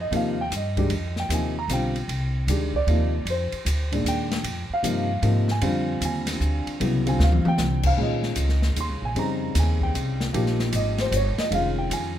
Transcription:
0.00 0.10 F2 medium
0.00 0.13 D#5 medium
0.11 0.50 D#2 medium
0.11 0.35 C3 medium
0.11 0.36 F3 medium
0.11 0.35 A#3 medium
0.11 0.36 D#4 medium
0.11 ride medium
0.16 0.40 F5 medium
0.41 0.53 G5 medium
0.50 0.89 G2 medium
0.50 hi-hat pedal medium
0.50 ride medium
0.56 1.15 D#5 medium
0.77 0.89 D#3 medium
0.77 0.89 G#3 medium
0.77 0.90 D4 medium
0.77 0.90 G4 medium
0.77 kick medium
0.77 ride soft
0.90 1.29 F2 medium
0.90 ride medium
1.16 1.31 G5 medium
1.16 snare soft
1.29 1.67 D#2 medium
1.29 1.53 C3 medium
1.29 1.53 F3 soft
1.29 1.54 A#3 medium
1.29 1.54 D#4 medium
1.29 hi-hat pedal medium
1.29 ride medium
1.34 1.58 G#5 medium
1.59 1.71 A#5 loud
1.68 2.07 B1 medium
1.68 1.93 D3 medium
1.68 1.93 G3 soft
1.68 1.93 C4 medium
1.68 1.94 F4 medium
1.68 hi-hat pedal medium
1.68 ride medium
1.73 2.33 G5 medium
1.96 ride soft
2.08 2.47 C2 medium
2.08 ride medium
2.47 2.86 D2 medium
2.47 2.72 D#3 medium
2.47 2.72 G#3 medium
2.47 2.72 D4 medium
2.47 2.72 G4 medium
2.47 hi-hat pedal medium
2.47 ride medium
2.74 3.24 D5 medium
2.74 kick soft
2.87 3.25 D#2 medium
2.87 3.11 C3 medium
2.87 3.11 F3 medium
2.87 3.12 A#3 medium
2.87 3.12 D#4 medium
2.87 ride medium
3.25 3.50 F2 medium
3.25 ride medium
3.30 3.90 C5 medium
3.52 muted upright bass stroke soft
3.52 ride soft
3.65 4.04 D2 medium
3.65 hi-hat pedal medium
3.65 ride medium
3.92 4.42 A#2 medium
3.92 4.42 D#3 soft
3.92 4.42 G#3 soft
3.92 4.42 D4 medium
3.92 ride soft
4.04 4.43 D#2 medium
4.04 hi-hat pedal medium
4.04 ride medium
4.08 4.68 G5 loud
4.32 snare medium
4.32 ride soft
4.44 4.68 F2 medium
4.44 ride medium
4.70 5.21 F5 medium
4.70 muted upright bass stroke soft
4.82 5.22 G2 medium
4.82 5.07 C3 medium
4.82 5.07 F3 medium
4.82 5.07 A#3 medium
4.82 5.07 D#4 medium
4.82 hi-hat pedal medium
4.82 ride medium
5.22 5.61 G#2 medium
5.22 5.46 C3 medium
5.22 5.46 F3 medium
5.22 5.46 A#3 medium
5.22 5.47 D#4 medium
5.22 ride medium
5.48 5.99 G#5 medium
5.48 snare soft
5.61 6.00 F2 medium
5.61 6.72 D3 medium
5.61 6.72 G3 medium
5.61 6.72 C4 medium
5.61 6.72 F4 medium
5.61 ride medium
6.01 6.39 D#2 loud
6.01 hi-hat pedal medium
6.01 ride medium
6.05 6.65 G#5 medium
6.27 snare soft
6.27 ride medium
6.40 6.65 D2 medium
6.40 hi-hat pedal medium
6.66 muted upright bass stroke soft
6.66 ride soft
6.80 7.18 C2 medium
6.80 7.03 C#3 medium
6.80 7.04 F#3 medium
6.80 7.04 B3 medium
6.80 7.04 E4 medium
6.80 ride medium
7.05 7.90 D3 medium
7.05 7.90 G3 medium
7.05 7.90 C4 medium
7.05 7.90 F4 medium
7.05 7.21 G#5 medium
7.05 ride soft
7.19 7.43 D2 medium
7.19 snare medium
7.24 7.47 F5 medium
7.32 mid tom medium
7.45 7.84 G5 loud
7.45 mid tom medium
7.58 7.97 C2 medium
7.58 snare medium
7.58 hi-hat pedal medium
7.83 7.99 F5 medium
7.83 kick medium
7.83 crash medium
7.97 8.35 A#1 medium
7.97 9.07 D#3 medium
7.97 9.08 G#3 medium
7.97 9.08 C#4 medium
7.97 9.08 F4 medium
8.02 8.61 D#5 medium
8.23 snare soft
8.36 8.75 C#2 medium
8.36 hi-hat pedal medium
8.36 ride medium
8.49 snare soft
8.62 snare soft
8.76 8.89 D#2 medium
8.76 hi-hat pedal soft
8.76 ride medium
8.80 9.04 C6 medium
8.89 9.01 C#2 medium
9.02 9.15 A#1 medium
9.02 9.17 G#5 medium
9.15 9.54 F2 medium
9.15 10.26 C#3 medium
9.15 10.26 G3 medium
9.15 10.26 C4 medium
9.15 10.26 D#4 medium
9.15 9.54 A#5 medium
9.15 ride medium
9.55 9.93 D#2 medium
9.55 snare soft
9.55 hi-hat pedal medium
9.55 ride medium
9.59 9.82 G#5 medium
9.81 10.25 G5 medium
9.81 kick medium
9.94 10.32 C2 medium
9.94 hi-hat pedal soft
9.94 ride medium
10.21 snare soft
10.33 10.72 A#1 medium
10.33 11.43 F3 medium
10.33 11.43 A#3 medium
10.33 11.43 D#4 medium
10.33 11.44 G4 medium
10.33 ride medium
10.46 snare soft
10.59 snare soft
10.72 11.11 G#1 medium
10.72 10.99 D#5 medium
10.72 hi-hat pedal medium
10.72 ride medium
10.98 11.10 C5 medium
10.98 snare soft
10.98 ride soft
11.11 11.36 G1 medium
11.11 11.14 C5 medium
11.11 hi-hat pedal soft
11.11 ride medium
11.16 11.39 C#5 medium
11.37 11.52 D#5 medium
11.37 muted upright bass stroke soft
11.37 snare medium
11.37 ride soft
11.51 11.89 F1 medium
11.51 12.19 D#3 medium
11.51 12.19 G#3 medium
11.51 12.19 C#4 medium
11.51 12.19 F4 medium
11.51 ride medium
11.55 11.78 F5 medium
11.78 11.91 G5 medium
11.90 12.19 F2 medium
11.90 12.17 G#5 medium
11.90 hi-hat pedal medium
11.90 ride medium

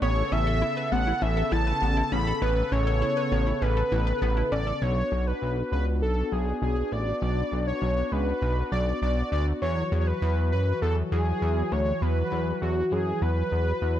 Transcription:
0.02 0.23 A1 loud
0.02 4.78 C#3 medium
0.02 2.40 B3 medium
0.02 0.13 B3 loud
0.02 4.78 A4 medium
0.02 0.33 C#5 loud
0.32 0.63 A1 loud
0.32 0.43 C#4 medium
0.32 0.93 E5 loud
0.47 0.58 A4 medium
0.62 0.73 E4 medium
0.77 0.88 B4 medium
0.92 1.13 A1 loud
0.92 1.03 B3 medium
0.92 1.23 F#5 loud
1.07 1.18 E4 medium
1.22 1.43 A1 loud
1.22 1.33 C#4 medium
1.22 1.53 E5 loud
1.37 1.48 A4 medium
1.52 1.73 A1 loud
1.52 1.63 E4 medium
1.52 2.13 A5 loud
1.67 1.78 B4 medium
1.82 2.03 A1 loud
1.82 1.93 B3 medium
1.97 2.08 E4 medium
2.12 2.33 A1 loud
2.12 2.23 C#4 medium
2.12 2.41 B5 loud
2.27 2.38 A4 medium
2.42 2.63 A1 loud
2.42 2.53 B3 loud
2.42 4.80 B3 medium
2.42 2.74 B4 loud
2.72 3.03 A1 loud
2.72 2.83 C#4 medium
2.72 3.64 C#5 loud
2.87 2.98 A4 medium
3.02 3.13 E4 medium
3.17 3.28 B4 medium
3.32 3.53 A1 loud
3.32 3.43 B3 medium
3.47 3.58 E4 medium
3.62 3.83 A1 loud
3.62 3.73 C#4 medium
3.62 4.51 B4 loud
3.77 3.88 A4 medium
3.92 4.13 A1 loud
3.92 4.03 E4 medium
4.07 4.18 B4 medium
4.22 4.43 A1 loud
4.22 4.33 B3 medium
4.37 4.48 E4 medium
4.52 4.73 A1 medium
4.52 4.63 C#4 medium
4.52 4.84 D5 loud
4.67 4.78 A4 medium
4.82 5.03 B1 loud
4.82 9.58 B3 medium
4.82 9.58 D4 medium
4.82 14.00 F#4 medium
4.82 5.29 C#5 loud
5.12 5.33 B1 medium
5.27 5.71 B4 medium
5.42 5.63 B1 medium
5.72 6.03 C#2 medium
5.72 5.86 B4 medium
6.02 6.23 B1 loud
6.02 6.34 A4 medium
6.32 6.53 B1 medium
6.32 6.61 G#4 medium
6.62 6.83 B1 medium
6.62 6.94 G#4 medium
6.92 7.13 A1 medium
6.92 7.67 D5 loud
7.22 7.43 B1 loud
7.52 7.73 B1 loud
7.67 8.14 C#5 medium
7.82 8.03 B1 loud
8.12 8.33 C#2 medium
8.12 8.71 B4 loud
8.42 8.63 B1 loud
8.72 8.93 B1 loud
8.72 9.00 D5 medium
9.02 9.23 B1 loud
9.02 9.30 D5 medium
9.32 9.53 D2 medium
9.32 9.45 D5 medium
9.62 9.83 E2 loud
9.62 14.00 E3 medium
9.62 14.00 F#3 medium
9.62 9.97 C#5 loud
9.92 10.13 E2 medium
10.00 10.09 C#5 medium
10.07 10.52 B4 medium
10.22 10.53 E2 loud
10.52 10.73 F#2 medium
10.52 10.80 B4 medium
10.82 11.03 E2 medium
10.82 10.96 A4 medium
11.12 11.33 E2 loud
11.12 11.74 G#4 loud
11.42 11.63 E2 loud
11.72 11.93 D2 medium
11.72 12.03 C#5 loud
12.02 12.23 E2 loud
12.02 12.61 B4 loud
12.32 12.53 E2 loud
12.62 12.83 E2 loud
12.62 12.93 F#4 medium
12.92 13.13 F#2 medium
12.92 13.23 G#4 medium
13.22 13.43 E2 loud
13.22 14.00 B4 loud
13.52 13.73 E2 medium
13.82 14.00 E2 loud

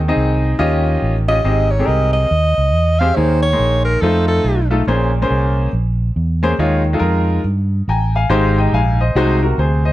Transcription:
0.00 0.11 D#2 medium
0.00 0.39 D#3 medium
0.08 0.54 C4 medium
0.08 0.54 D#4 medium
0.08 0.54 G#4 medium
0.08 0.54 D#5 medium
0.16 0.53 C2 medium
0.59 0.96 D#2 loud
0.59 1.25 D#3 medium
0.59 1.13 C#4 medium
0.59 1.13 F4 medium
0.59 1.13 G4 medium
0.59 1.13 D#5 medium
1.02 1.39 A1 medium
1.28 1.37 C#4 medium
1.28 1.37 F4 medium
1.28 1.37 G4 medium
1.28 1.73 D#5 medium
1.28 1.38 D#5 medium
1.44 1.81 G#1 medium
1.44 2.10 G#2 medium
1.44 1.66 C4 medium
1.44 1.66 G4 medium
1.44 1.66 G#4 medium
1.44 1.66 D#5 medium
1.71 1.88 C#5 medium
1.79 2.25 C4 medium
1.79 2.25 G4 medium
1.79 2.25 G#4 medium
1.79 1.84 A4 medium
1.85 2.24 C2 medium
1.85 2.28 A#4 medium
1.85 2.13 D#5 medium
2.13 3.01 D#5 medium
2.31 2.53 D#2 medium
2.58 2.74 C#2 medium
2.74 3.10 E2 medium
3.00 3.09 C4 medium
3.00 3.09 G4 medium
3.00 3.09 G#4 medium
3.00 3.09 C5 medium
3.00 3.17 F5 medium
3.16 3.53 D#2 medium
3.16 3.82 D#3 medium
3.16 3.38 A#3 medium
3.16 3.38 D#4 medium
3.16 3.38 G#4 medium
3.16 3.42 C5 medium
3.16 3.38 C#5 medium
3.43 3.83 C#5 medium
3.52 3.97 A#3 medium
3.52 3.98 D#4 medium
3.52 3.97 G#4 medium
3.52 3.97 C6 medium
3.59 3.96 A#1 medium
3.85 4.03 A#4 medium
4.02 4.39 F2 loud
4.02 4.56 A3 medium
4.02 4.56 D#4 medium
4.02 4.56 F4 medium
4.02 4.28 A4 medium
4.02 4.56 C5 medium
4.28 4.68 A4 medium
4.44 4.81 B1 medium
4.71 4.80 A3 medium
4.71 4.80 D#4 medium
4.71 4.80 F4 medium
4.71 4.80 A4 medium
4.87 5.24 A#1 loud
4.87 5.53 A#2 medium
4.87 5.09 A#3 medium
4.87 5.09 C#4 medium
4.87 5.09 G#4 medium
4.87 5.09 C5 medium
5.22 5.67 A#3 medium
5.22 5.68 C#4 medium
5.22 5.68 G#4 medium
5.22 5.68 C5 medium
5.31 5.67 C2 medium
5.73 6.10 A#1 medium
6.16 6.53 E2 medium
6.43 6.52 A#3 medium
6.43 6.52 C#4 medium
6.43 6.52 G#4 medium
6.43 6.52 C5 medium
6.59 6.95 D#2 loud
6.59 7.25 D#3 medium
6.59 6.81 G#3 medium
6.59 6.81 D#4 medium
6.59 6.81 F4 medium
6.59 6.81 C#5 medium
6.93 7.39 G#3 medium
6.93 7.39 D#4 medium
6.93 7.39 F4 medium
6.93 6.98 A4 medium
6.99 7.38 F2 medium
6.99 7.42 A#4 medium
7.44 7.81 G2 medium
7.88 8.24 A1 medium
7.88 8.14 G5 medium
7.88 8.13 G#5 medium
7.88 8.13 A#5 medium
8.16 8.56 F5 medium
8.16 8.55 G#5 medium
8.30 8.66 G#1 loud
8.30 8.95 G#2 medium
8.30 8.77 G#3 medium
8.30 8.77 D#4 medium
8.30 8.77 G4 medium
8.30 8.57 C5 medium
8.58 8.73 D#5 medium
8.58 8.73 G5 medium
8.73 9.09 A#1 medium
8.73 8.99 F5 medium
8.73 8.99 G#5 medium
9.01 9.15 C5 medium
9.01 9.41 D#5 medium
9.15 9.52 C2 loud
9.15 9.81 C3 medium
9.15 9.37 G#3 medium
9.15 9.37 D#4 medium
9.15 9.37 F#4 medium
9.15 9.37 C5 loud
9.43 9.58 F#4 medium
9.43 9.58 A#4 medium
9.58 9.93 D2 medium
9.58 9.84 G#4 medium
9.58 9.84 C5 medium
9.85 9.93 C5 medium
9.85 9.93 D#5 medium

